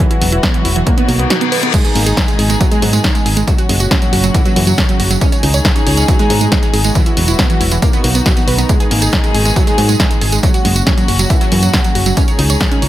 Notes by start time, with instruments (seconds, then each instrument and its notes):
Already playing: string section G#3
0.00 string section E3 F#3 B3 F#4
0.11 synth arpeggio sound E4, closed hi-hat
0.21 fm bass E1, synth arpeggio sound F#3, open hi-hat
0.32 synth arpeggio sound E4, closed hi-hat
0.43 synth arpeggio sound B3, kick, snare, closed hi-hat
0.54 synth arpeggio sound E3, closed hi-hat
0.65 fm bass E1, synth arpeggio sound E4, open hi-hat
0.76 synth arpeggio sound E3, closed hi-hat
0.86 string section B2 D#3 D#4, synth arpeggio sound A#3, kick, closed hi-hat, reverse cymbal
0.98 synth arpeggio sound B3, closed hi-hat
1.08 fm bass B1, synth arpeggio sound A#3, open hi-hat
1.19 synth arpeggio sound B3, closed hi-hat
1.30 synth arpeggio sound F#4, snare, closed hi-hat
1.41 synth arpeggio sound B3, closed hi-hat
1.52 synth arpeggio sound B4, open hi-hat
1.63 synth arpeggio sound B3, closed hi-hat
1.74 string section B2 G#3 G#4, synth arpeggio sound G#3, kick, closed hi-hat, tambourine, crash
1.84 synth arpeggio sound G#4, closed hi-hat, tambourine
1.95 fm bass G#1, synth arpeggio sound A#3, open hi-hat
2.06 synth arpeggio sound G#4, closed hi-hat, tambourine
2.17 synth arpeggio sound D#4, kick, snare, closed hi-hat, tambourine
2.28 synth arpeggio sound G#3, closed hi-hat, tambourine
2.39 fm bass G#1, synth arpeggio sound G#4, open hi-hat
2.50 synth arpeggio sound G#3, closed hi-hat, tambourine
2.60 synth arpeggio sound F#3, kick, closed hi-hat, tambourine
2.71 synth arpeggio sound G#3, closed hi-hat, tambourine
2.82 fm bass G#2, synth arpeggio sound F#3, open hi-hat
2.93 synth arpeggio sound G#3, closed hi-hat, tambourine
3.04 synth arpeggio sound D#4, kick, snare, closed hi-hat
3.15 synth arpeggio sound G#3, closed hi-hat, tambourine
3.26 fm bass G#1, synth arpeggio sound G#4, open hi-hat
3.37 synth arpeggio sound G#3, closed hi-hat, tambourine
3.47 string section A#2 C#3 F#3 C#4 F#4, synth arpeggio sound F#3, kick, closed hi-hat, tambourine
3.58 synth arpeggio sound F#4, closed hi-hat, tambourine
3.69 fm bass F#1, synth arpeggio sound G#3, open hi-hat
3.80 synth arpeggio sound F#4, closed hi-hat, tambourine
3.91 synth arpeggio sound C#4, kick, snare, closed hi-hat, tambourine
4.02 synth arpeggio sound F#3, closed hi-hat, tambourine
4.13 fm bass F#1, synth arpeggio sound F#4, open hi-hat
4.24 synth arpeggio sound F#3, closed hi-hat, tambourine
4.34 synth arpeggio sound E3, kick, closed hi-hat, tambourine
4.45 synth arpeggio sound F#3, closed hi-hat, tambourine
4.56 fm bass F#2, synth arpeggio sound E3, open hi-hat
4.67 synth arpeggio sound F#3, closed hi-hat, tambourine
4.78 synth arpeggio sound C#4, kick, snare, closed hi-hat, tambourine
4.89 synth arpeggio sound F#3, closed hi-hat, tambourine
5.00 fm bass F#1, synth arpeggio sound F#4, open hi-hat
5.11 synth arpeggio sound F#3, closed hi-hat, tambourine
5.21 string section D#3 G#3 D#4 G#4, synth arpeggio sound C#4, kick, closed hi-hat, tambourine
5.32 synth arpeggio sound C#5, closed hi-hat, tambourine
5.43 fm bass C#2, synth arpeggio sound D#4, open hi-hat
5.54 synth arpeggio sound C#5, closed hi-hat, tambourine
5.65 synth arpeggio sound G#4, kick, snare, closed hi-hat, tambourine
5.76 synth arpeggio sound C#4, closed hi-hat, tambourine
5.87 fm bass C#2, synth arpeggio sound C#5, open hi-hat
5.97 synth arpeggio sound C#4, closed hi-hat, tambourine
6.08 string section B2, synth arpeggio sound F#3, kick, closed hi-hat, tambourine
6.19 synth arpeggio sound G#3, closed hi-hat, tambourine
6.30 fm bass G#2, synth arpeggio sound F#3, open hi-hat
6.41 synth arpeggio sound G#3, closed hi-hat, tambourine
6.52 synth arpeggio sound D#4, kick, snare, closed hi-hat, tambourine
6.63 synth arpeggio sound G#3, closed hi-hat, tambourine
6.74 fm bass G#1, synth arpeggio sound G#4, open hi-hat
6.84 synth arpeggio sound G#3, closed hi-hat, tambourine
6.95 string section E3 F#3 B3 F#4, synth arpeggio sound E3, kick, closed hi-hat, tambourine
7.06 synth arpeggio sound E4, closed hi-hat, tambourine
7.17 fm bass E1, synth arpeggio sound F#3, open hi-hat
7.28 synth arpeggio sound E4, closed hi-hat, tambourine
7.39 synth arpeggio sound B3, kick, snare, closed hi-hat, tambourine
7.50 synth arpeggio sound E3, closed hi-hat, tambourine
7.61 fm bass E1, synth arpeggio sound E4, open hi-hat
7.71 synth arpeggio sound E3, closed hi-hat, tambourine
7.82 string section B2 D#3 D#4 F#4, synth arpeggio sound A#3, kick, closed hi-hat, tambourine
7.93 synth arpeggio sound B3, closed hi-hat, tambourine
8.04 fm bass B1, synth arpeggio sound A#3, open hi-hat
8.15 synth arpeggio sound B3, closed hi-hat, tambourine
8.26 synth arpeggio sound F#4, kick, snare, closed hi-hat, tambourine
8.37 synth arpeggio sound B3, closed hi-hat, tambourine
8.47 fm bass B1, synth arpeggio sound B4, open hi-hat
8.58 synth arpeggio sound B3, closed hi-hat, tambourine
8.69 synth arpeggio sound G#3, string section G#3 G#4, kick, closed hi-hat, tambourine
8.80 synth arpeggio sound G#4, closed hi-hat, tambourine
8.91 fm bass G#1, synth arpeggio sound A#3, open hi-hat
9.02 synth arpeggio sound G#4, closed hi-hat, tambourine
9.13 synth arpeggio sound D#4, kick, snare, closed hi-hat, tambourine
9.24 synth arpeggio sound G#3, closed hi-hat, tambourine
9.34 fm bass G#1, synth arpeggio sound G#4, open hi-hat
9.45 synth arpeggio sound G#3, closed hi-hat, tambourine
9.56 synth arpeggio sound F#3, kick, closed hi-hat, tambourine
9.67 synth arpeggio sound G#3, closed hi-hat, tambourine
9.78 fm bass G#2, synth arpeggio sound F#3, open hi-hat
9.89 synth arpeggio sound G#3, closed hi-hat, tambourine
10.00 synth arpeggio sound D#4, kick, snare, closed hi-hat, tambourine
10.11 synth arpeggio sound G#3, closed hi-hat, tambourine
10.21 fm bass G#1, synth arpeggio sound G#4, open hi-hat
10.32 synth arpeggio sound G#3, closed hi-hat, tambourine
10.43 string section A#2 C#3 F#3 C#4 F#4, synth arpeggio sound F#3, kick, closed hi-hat, tambourine
10.54 synth arpeggio sound F#4, closed hi-hat, tambourine
10.65 fm bass F#1, synth arpeggio sound G#3, open hi-hat
10.76 synth arpeggio sound F#4, closed hi-hat, tambourine
10.87 synth arpeggio sound C#4, kick, snare, closed hi-hat, tambourine
10.98 synth arpeggio sound F#3, closed hi-hat, tambourine
11.08 fm bass F#1, synth arpeggio sound F#4, open hi-hat
11.19 synth arpeggio sound F#3, closed hi-hat, tambourine
11.30 synth arpeggio sound E3, kick, closed hi-hat, tambourine
11.41 synth arpeggio sound F#3, closed hi-hat, tambourine
11.52 fm bass F#2, synth arpeggio sound E3, open hi-hat
11.63 synth arpeggio sound F#3, closed hi-hat, tambourine
11.74 synth arpeggio sound C#4, kick, snare, closed hi-hat, tambourine
11.84 synth arpeggio sound F#3, closed hi-hat, tambourine
11.95 fm bass F#1, synth arpeggio sound F#4, open hi-hat
12.06 synth arpeggio sound F#3, closed hi-hat, tambourine
12.17 string section D#3 G#3 D#4 G#4, synth arpeggio sound C#4, kick, closed hi-hat, tambourine
12.28 synth arpeggio sound C#5, closed hi-hat, tambourine
12.39 fm bass C#2, synth arpeggio sound D#4, open hi-hat
12.50 synth arpeggio sound C#5, closed hi-hat, tambourine
12.61 synth arpeggio sound G#4, kick, snare, closed hi-hat
12.71 synth arpeggio sound C#4, closed hi-hat, tambourine
12.82 fm bass C#2, synth arpeggio sound C#5, open hi-hat